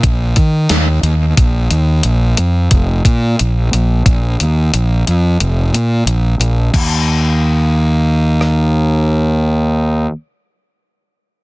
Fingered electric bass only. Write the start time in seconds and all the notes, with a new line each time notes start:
0.04 A#1
0.37 D#3
0.70 D#2
1.03 D#2
1.38 A#1
1.71 D#2
2.04 A#1
2.38 F2
2.71 F1
3.05 A#2
3.40 A#1
3.73 A#1
4.06 A#1
4.41 D#2
4.74 A#1
5.08 F2
5.41 F1
5.73 A#2
6.06 A#1
6.39 A#1
6.74 D#2